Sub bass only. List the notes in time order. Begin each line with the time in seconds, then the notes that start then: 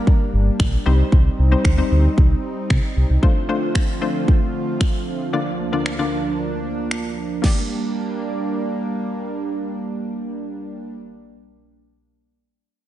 0.33 G1
0.60 A#1
0.86 C2
1.12 C2
1.39 C2
1.65 D2
1.91 D2
2.18 C2
2.70 C3
2.96 C2
3.10 C2